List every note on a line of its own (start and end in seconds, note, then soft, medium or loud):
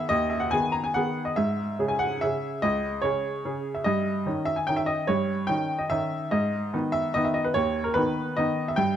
0.09 0.51 D#2 medium
0.09 0.30 D#5 medium
0.30 0.40 E5 medium
0.40 0.51 F#5 medium
0.51 0.91 D#3 soft
0.51 0.91 B3 soft
0.51 0.92 G#4 soft
0.51 0.73 G#5 medium
0.72 0.83 A#5 medium
0.84 0.95 G#5 medium
0.94 1.33 D#3 soft
0.94 1.33 B3 soft
0.94 1.33 G#4 soft
0.94 1.26 F#5 medium
1.25 1.36 D#5 medium
1.36 1.77 G#2 medium
1.36 1.89 E5 medium
1.79 2.18 C#3 soft
1.79 2.18 C#4 soft
1.79 2.18 G#4 soft
1.88 2.00 G#5 medium
1.99 2.21 F#5 medium
2.21 2.59 C#3 soft
2.21 2.59 C#4 soft
2.21 2.60 G#4 soft
2.21 2.62 E5 medium
2.62 3.01 C#2 medium
2.62 3.02 D#5 medium
3.02 3.41 C#3 soft
3.02 3.41 C#4 soft
3.02 3.41 G#4 soft
3.02 3.75 C#5 medium
3.45 3.82 C#3 soft
3.45 3.82 C#4 soft
3.45 3.82 G#4 soft
3.75 3.85 E5 medium
3.84 4.25 G2 medium
3.84 4.46 D#5 medium
4.26 4.64 D#3 soft
4.26 4.64 C#4 soft
4.26 4.64 D#4 soft
4.45 4.57 E5 medium
4.56 4.67 G#5 medium
4.67 5.05 D#3 soft
4.67 5.05 C#4 soft
4.67 5.06 D#4 soft
4.67 4.78 G5 medium
4.76 4.88 E5 medium
4.86 5.08 D#5 medium
5.07 5.48 G2 medium
5.07 5.49 C#5 medium
5.47 5.87 D#3 soft
5.47 5.87 C#4 soft
5.47 5.87 D#4 soft
5.47 5.80 G5 medium
5.79 5.90 D#5 medium
5.90 6.28 D#3 soft
5.90 6.29 C#4 soft
5.90 6.29 D#4 soft
5.90 6.32 E5 medium
6.31 6.72 G#2 medium
6.31 6.94 D#5 medium
6.73 7.12 D#3 soft
6.73 7.12 B3 soft
6.73 7.12 D#4 soft
6.92 7.15 E5 medium
7.14 7.53 D#3 soft
7.14 7.53 B3 soft
7.14 7.53 D#4 soft
7.14 7.25 D#5 medium
7.25 7.36 E5 medium
7.34 7.45 D#5 medium
7.44 7.56 B4 medium
7.54 7.95 D#2 medium
7.54 7.85 C#5 medium
7.84 7.96 A#4 medium
7.94 8.34 D#3 soft
7.94 8.34 B3 soft
7.94 8.35 D#4 medium
7.94 8.38 B4 medium
8.37 8.75 D#3 soft
8.37 8.76 B3 soft
8.37 8.76 D#4 soft
8.37 8.69 D#5 medium
8.68 8.79 E5 medium
8.76 8.96 G2 medium
8.76 8.96 G5 medium